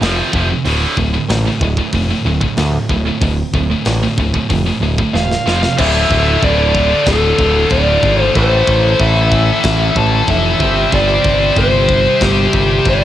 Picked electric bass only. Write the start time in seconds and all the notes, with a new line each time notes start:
0.01 F1
0.33 F1
0.65 D1
0.97 D1
1.29 A1
1.61 D1
1.93 F1
2.25 D1
2.57 D2
2.89 D1
3.21 D1
3.53 D1
3.86 A1
4.18 D1
4.50 F1
4.81 D1
5.14 E1
5.46 F1
5.78 D1
6.10 D1
6.42 D1
7.06 D1
7.38 D1
7.71 D1
8.03 G#1
8.36 A1
8.68 A1
9.00 A1
9.64 A1
9.95 A1
10.27 F1
10.60 G1
10.93 G1
11.24 G1
11.56 G1
12.21 G1
12.53 G1
12.85 G1